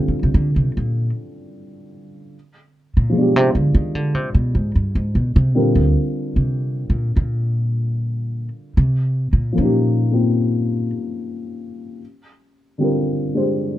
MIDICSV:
0, 0, Header, 1, 3, 480
1, 0, Start_track
1, 0, Key_signature, -2, "minor"
1, 0, Tempo, 805369
1, 1395, Time_signature, 4, 2, 24, 8
1, 8216, End_track
2, 0, Start_track
2, 0, Title_t, "Upright piano"
2, 0, Program_c, 0, 0
2, 0, Control_c, 0, 64, 127
2, 0, Note_on_c, 0, 50, 36
2, 0, Note_on_c, 0, 55, 34
2, 0, Note_on_c, 0, 60, 33
2, 0, Note_on_c, 0, 65, 32
2, 0, Note_on_c, 0, 69, 38
2, 1397, Note_off_c, 0, 50, 0
2, 1397, Note_off_c, 0, 55, 0
2, 1399, Note_off_c, 0, 60, 0
2, 1400, Note_off_c, 0, 65, 0
2, 1403, Note_off_c, 0, 69, 0
2, 1403, Control_c, 0, 64, 0
2, 1495, Control_c, 0, 64, 127
2, 1845, Note_on_c, 0, 53, 38
2, 1861, Note_on_c, 0, 56, 35
2, 1878, Note_on_c, 0, 59, 34
2, 1896, Note_on_c, 0, 62, 35
2, 1909, Note_on_c, 0, 67, 42
2, 3293, Note_off_c, 0, 53, 0
2, 3301, Note_off_c, 0, 56, 0
2, 3306, Note_on_c, 0, 50, 42
2, 3306, Note_on_c, 0, 55, 37
2, 3310, Note_off_c, 0, 59, 0
2, 3311, Note_on_c, 0, 60, 41
2, 3314, Note_on_c, 0, 65, 37
2, 3314, Note_on_c, 0, 70, 45
2, 3315, Control_c, 0, 64, 0
2, 3319, Note_off_c, 0, 62, 0
2, 3325, Note_off_c, 0, 67, 0
2, 3429, Control_c, 0, 64, 127
2, 5222, Note_off_c, 0, 50, 0
2, 5222, Note_off_c, 0, 55, 0
2, 5225, Note_off_c, 0, 60, 0
2, 5226, Note_off_c, 0, 65, 0
2, 5226, Note_off_c, 0, 70, 0
2, 5229, Control_c, 0, 64, 0
2, 5323, Control_c, 0, 64, 127
2, 5676, Note_on_c, 0, 53, 37
2, 5690, Note_on_c, 0, 58, 32
2, 5710, Note_on_c, 0, 61, 33
2, 5726, Note_on_c, 0, 63, 33
2, 5741, Note_on_c, 0, 67, 38
2, 6018, Note_off_c, 0, 58, 0
2, 6027, Note_on_c, 0, 58, 30
2, 6040, Note_on_c, 0, 60, 30
2, 6045, Note_on_c, 0, 65, 33
2, 7137, Note_off_c, 0, 53, 0
2, 7148, Note_off_c, 0, 58, 0
2, 7154, Note_off_c, 0, 60, 0
2, 7154, Note_off_c, 0, 61, 0
2, 7157, Note_off_c, 0, 65, 0
2, 7159, Control_c, 0, 64, 0
2, 7162, Note_off_c, 0, 63, 0
2, 7170, Note_off_c, 0, 67, 0
2, 7271, Control_c, 0, 64, 127
2, 7617, Note_on_c, 0, 50, 39
2, 7623, Note_on_c, 0, 55, 33
2, 7631, Note_on_c, 0, 60, 32
2, 7636, Note_on_c, 0, 65, 32
2, 7648, Note_on_c, 0, 70, 37
2, 7955, Note_on_c, 0, 56, 33
2, 7958, Note_on_c, 0, 62, 28
2, 7964, Note_on_c, 0, 67, 29
2, 7969, Note_on_c, 0, 72, 33
2, 8216, Note_off_c, 0, 50, 0
2, 8216, Note_off_c, 0, 55, 0
2, 8216, Note_off_c, 0, 56, 0
2, 8216, Note_off_c, 0, 60, 0
2, 8216, Note_off_c, 0, 62, 0
2, 8216, Note_off_c, 0, 65, 0
2, 8216, Note_off_c, 0, 67, 0
2, 8216, Note_off_c, 0, 70, 0
2, 8216, Note_off_c, 0, 72, 0
2, 8216, End_track
3, 0, Start_track
3, 0, Title_t, "Upright bass"
3, 0, Program_c, 1, 32
3, 49, Note_on_c, 1, 46, 50
3, 107, Note_off_c, 1, 46, 0
3, 137, Note_on_c, 1, 48, 63
3, 201, Note_off_c, 1, 48, 0
3, 204, Note_on_c, 1, 50, 69
3, 318, Note_off_c, 1, 50, 0
3, 334, Note_on_c, 1, 48, 62
3, 421, Note_off_c, 1, 48, 0
3, 459, Note_on_c, 1, 46, 58
3, 649, Note_off_c, 1, 46, 0
3, 1769, Note_on_c, 1, 46, 64
3, 1887, Note_off_c, 1, 46, 0
3, 1887, Note_on_c, 1, 47, 58
3, 2003, Note_off_c, 1, 47, 0
3, 2003, Note_on_c, 1, 48, 60
3, 2112, Note_off_c, 1, 48, 0
3, 2115, Note_on_c, 1, 50, 61
3, 2229, Note_off_c, 1, 50, 0
3, 2232, Note_on_c, 1, 51, 72
3, 2354, Note_off_c, 1, 51, 0
3, 2354, Note_on_c, 1, 50, 57
3, 2471, Note_off_c, 1, 50, 0
3, 2471, Note_on_c, 1, 48, 56
3, 2586, Note_off_c, 1, 48, 0
3, 2590, Note_on_c, 1, 47, 71
3, 2705, Note_off_c, 1, 47, 0
3, 2710, Note_on_c, 1, 44, 61
3, 2804, Note_off_c, 1, 44, 0
3, 2834, Note_on_c, 1, 43, 59
3, 2949, Note_off_c, 1, 43, 0
3, 2952, Note_on_c, 1, 44, 64
3, 3066, Note_off_c, 1, 44, 0
3, 3070, Note_on_c, 1, 47, 65
3, 3185, Note_off_c, 1, 47, 0
3, 3194, Note_on_c, 1, 48, 77
3, 3317, Note_off_c, 1, 48, 0
3, 3317, Note_on_c, 1, 46, 57
3, 3425, Note_off_c, 1, 46, 0
3, 3429, Note_on_c, 1, 38, 62
3, 3540, Note_off_c, 1, 38, 0
3, 3791, Note_on_c, 1, 48, 62
3, 4105, Note_off_c, 1, 48, 0
3, 4110, Note_on_c, 1, 46, 62
3, 4257, Note_off_c, 1, 46, 0
3, 4271, Note_on_c, 1, 46, 63
3, 5051, Note_off_c, 1, 46, 0
3, 5228, Note_on_c, 1, 48, 74
3, 5544, Note_off_c, 1, 48, 0
3, 5559, Note_on_c, 1, 46, 62
3, 5702, Note_off_c, 1, 46, 0
3, 5708, Note_on_c, 1, 46, 60
3, 6494, Note_off_c, 1, 46, 0
3, 8216, End_track
0, 0, End_of_file